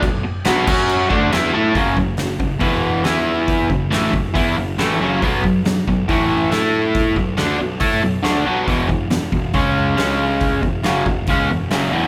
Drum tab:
CC |x-xxx-x-|--------|--------|--------|
HH |--------|o-o-o-o-|o-o-o-o-|o-o-o-o-|
SD |--o---o-|--o---o-|--o---o-|--o---o-|
BD |o--o-o--|oo-oo---|oo-oo---|oo-oo---|

CC |--------|--------|--------|
HH |o-o-o-o-|o-o-o-o-|o-o-o-o-|
SD |--o---o-|--o---o-|--o---o-|
BD |oo--o---|oo-oo---|oo-oo---|